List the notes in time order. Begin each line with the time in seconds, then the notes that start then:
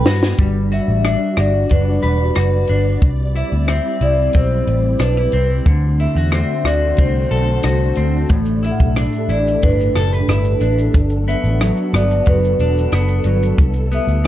Already playing: G3 B3 D4 A4 B4
0.05 G2 F#4, snare
0.23 snare
0.38 G1 G3 D4 F#4 D5, kick, closed hi-hat
0.72 F#4 E5, closed hi-hat
0.88 A1
1.05 D4 E5, cross-stick, closed hi-hat
1.36 G1 F#4 D5, cross-stick, closed hi-hat
1.69 F#1 D4 B4, kick, closed hi-hat
2.03 E1 B4, closed hi-hat
2.35 F#1 F#4 B4, cross-stick, closed hi-hat
2.67 G1 D4, closed hi-hat
3.02 C2 G3 C4 E4, kick, closed hi-hat
3.36 E4 E5, closed hi-hat
3.52 D2
3.68 C4, cross-stick, closed hi-hat
4.01 C2 E4 D5, closed hi-hat
4.33 B1 C4 C5, kick, closed hi-hat
4.67 A1 C5, closed hi-hat
4.99 B1 D4 B4, cross-stick, closed hi-hat
5.17 E4
5.32 C2 C4, closed hi-hat
5.66 D2 D3 A3 D4 F#4 C5, kick, closed hi-hat
6.00 E4 E5, closed hi-hat
6.16 E2 F#4
6.32 C4, cross-stick, closed hi-hat
6.65 D2 F#4 D5, cross-stick, closed hi-hat
6.97 C2 C4 C5, kick, closed hi-hat
7.31 B1 A4 C5, closed hi-hat
7.63 C2 F#4 C5, cross-stick, closed hi-hat
7.95 D2 C4, closed hi-hat
8.29 A1 A2 G4 A4, kick, closed hi-hat, shaker
8.45 shaker
8.63 E4 E5, closed hi-hat, shaker
8.71 F#5
8.79 B1 E5, kick, shaker
8.96 D4, cross-stick, closed hi-hat, shaker
9.12 shaker
9.29 A1 E4 D5, closed hi-hat, shaker
9.47 shaker
9.62 G1 D4 B4, kick, closed hi-hat, shaker
9.80 shaker
9.95 F#1 A4, cross-stick, closed hi-hat, shaker
10.13 B4, shaker
10.28 G1 E4 B4, cross-stick, closed hi-hat, shaker
10.44 shaker
10.61 A1 D4, closed hi-hat, shaker
10.78 shaker
10.94 G1 F#3 F#4, kick, closed hi-hat, shaker
11.10 shaker
11.28 B3 E5, closed hi-hat, shaker
11.44 A1, shaker
11.61 F#3, cross-stick, closed hi-hat, shaker
11.77 shaker
11.94 G1 B3 D5, cross-stick, closed hi-hat, shaker
12.11 shaker
12.26 F#1 F#3 B4, kick, closed hi-hat, shaker
12.44 shaker
12.59 E1 D4, closed hi-hat, shaker
12.78 shaker
12.92 F#1 B3 B4, cross-stick, closed hi-hat, shaker
13.08 shaker
13.24 G1 F#3, closed hi-hat, shaker
13.43 shaker
13.58 C2 G3 E4, kick, closed hi-hat, shaker
13.74 shaker
13.92 B3 E5, closed hi-hat, shaker
14.07 D2, shaker
14.24 G3